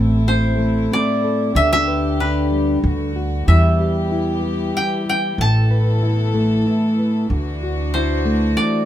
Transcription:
Already playing: A1 A2 C3 A3 C4 E4 A4 B4
0.27 C4 C5
0.58 A3
0.92 C4 D5
1.24 A4
1.53 D2 D3 B3 G4 E5
1.73 E5
1.88 B4
2.20 D4 B4
2.52 G3
2.83 D2 D3 A3 F#4
3.16 F#4
3.45 E2 E3 G3 B3 G4 E5
3.50 E4 G4
3.80 G4
4.12 E4
4.43 G3
4.74 E4 G5
5.06 G4 G5
5.35 A1 A2 B3 A4
5.41 A5
5.71 B4
6.03 E4
6.34 A3
6.67 E4
6.99 B4
7.29 D2 D3 D4 F#4
7.63 F#4
7.94 E4 C5
8.25 A3
8.56 E3 D5

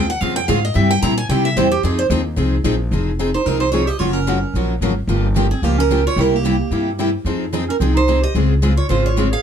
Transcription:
Already playing: D#2
0.10 F#5
0.21 F2 C#3 G#3 C4 F4 G#4 F5
0.36 G5
0.48 G#2 C#3 G#3 C4 F4 G#4 F5
0.65 D#5
0.74 G2 C3 G3 C4 E4 G4 E5
0.91 G5
1.02 A#2 C3 G3 C4 E4 G4 A#5
1.18 G#5
1.29 C3 G3 C4 E4 G4 G5
1.45 E5
1.57 E2 C3 G3 C4 E4 G4 C5
1.71 G4
1.83 F2 F3 C4 D#4 G#4
1.99 C5
2.10 D#2 F3 C4 D#4 G#4
2.36 C2 F3 C4 D#4 G#4
2.64 A#1 F3 C4 D#4 G#4
2.91 F1 F3 C4 D#4 G#4
3.19 F3 C4 D#4 G#4
3.34 D#4 C5
3.44 C2 F3 C4 D#4 A#4
3.48 G#4
3.58 D#4 C5
3.72 F3 C4 D#4 F4 G#4 C#5
3.85 G4 D#5
3.99 F#1 C#3 F3 F#3 A#3 C#4 F4 F#4 A#4 C#5
4.13 C#4 A#4
4.27 C#3 F3 F#3 A#3 C#4 F4 F#4 A#4
4.54 A#1 C#3 F3 F#3 A#3 C#4 F4 F#4 A#4
4.81 G#1 C#3 F3 F#3 A#3 C#4 F4 F#4 A#4
5.07 G1 C#3 F3 A#3 F4 G4
5.36 C#3 F3 A#3 F4 G4
5.51 C4 G#4
5.62 C#2 C#3 F3 A#3 F4 G4
5.78 C#4 A#4
5.91 C#3 F3 A#3 F4 G4
6.06 F4 C#5
6.16 C2 C3 G3 A#3 E4 G4
6.21 A#4
6.34 A#3 G4
6.45 C3 G3 A#3 E4 G4
6.71 G2 C3 G3 A#3 E4 G4
6.99 C3 G3 A#3 E4 G4
7.25 F2 F3 C4 D#4 G#4
7.53 F3 C4 D#4 G#4
7.68 C#4 A#4
7.79 C2 F3 C4 D#4 G#4
7.94 D#4 C5
8.08 F3 C4 D#4 G#4
8.21 G4 D#5
8.35 C#2 C#3 G#3 C4 F4 G#4
8.62 C#3 G#3 C4 F4 G#4
8.76 F4 C#5
8.88 G#1 C#3 G#3 C4 F4 G#4 C5
9.02 F4 C#5
9.17 C#3 G#3 C4 F4 G#4
9.31 G#4 F5

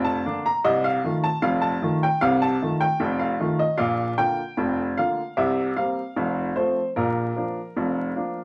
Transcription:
Already playing: F1 F2
0.04 A5
0.26 D3 A#3 D4
0.46 A#5
0.64 C2 C3 D#5
0.84 F5
1.04 D#3 A3 F4
1.24 A5
1.42 F1 F2 F5
1.62 A5
1.82 D#3 A3 F4
2.03 G5
2.21 C2 C3 F5
2.42 A5
2.62 D#3 A3 F4
2.80 G5
3.00 F1 F2
3.19 F5
3.40 D#3 A3 F4
3.59 D#5
3.78 A#1 A#2 F5
4.18 D3 A#3 F4 G5
4.57 F1 F2
4.97 D3 A#3 F4 F5
5.37 C2 C3 E5
5.77 G3 A#3 C4 F5
6.16 F1 F2
6.56 F3 A3 C4 C5
6.96 A#1 A#2 A#4
7.36 F3 A#3 D4
7.76 F1 F2
8.16 F3 A#3 D4

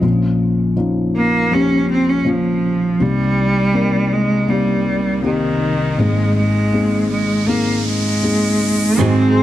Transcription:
0.01 A#1 A#2 F3 A#3 C4 F4
0.09 C#4
0.76 F3 A#3 C#4 D#4
1.16 A#3
1.51 F3 A#3 C#4 G4
1.91 C4
2.09 C#4
2.25 F3 A#3 C#4 F4
2.99 C2 C3 G3 A#3 C4 D#4 G4, riser
3.73 A#3 C4 D#4 A#4
4.13 G#3
4.47 G3 A#3 C4 D#4 G4
5.22 D#3 A#3 C4 D#4 G4
5.97 G#1 G#2 G#3 A#3 C4 D#4 G#4
6.36 G#3
6.72 A#3 C4 D#4 G#4
7.11 G#3
7.47 A#3 C4 D#4 G#4
7.87 G#3
8.22 A#3 C4 D#4 G#4
8.97 G#2 D#3 F#3 G#3 C4 D#4 F#4 G#4 G#5 C6

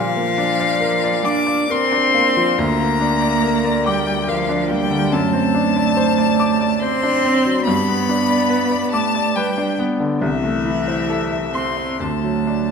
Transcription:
Already playing: A#2 F3 F5
0.16 A#3
0.38 D4
0.60 D5
0.81 A#4
1.04 D5
1.23 D4 D6
1.47 D5
1.70 C4 A#4 C6
1.92 D4
2.14 A#3
2.37 F3
2.58 D2 A#3 A#5
2.79 A#3
3.00 D4
3.22 D5
3.43 A#4
3.65 D5
3.86 G3 G5 D6
4.07 D5
4.28 F3 A#4 F5
4.49 D4
4.70 G3 A#3 G5
4.90 D3
5.12 F#2 A3 A5
5.33 C4
5.54 D4
5.76 D5
5.97 C5
6.18 D5
6.40 D6
6.61 D5
6.80 C4 C5 C6
7.03 D4
7.25 C4
7.45 F#3
7.64 G2 B3 B5
7.88 B3
8.09 D4
8.29 D5
8.50 B4
8.71 D5
8.92 A3 A5 D6
9.15 D5
9.34 G3 B4 G5
9.58 D4
9.79 B3
10.00 D3
10.22 C2 E3 E5
10.43 A3
10.65 E4
10.88 C5
11.10 A4
11.32 E5
11.53 C4 C6
11.77 E5
11.99 D2 A3 A5
12.24 F#3
12.47 D4

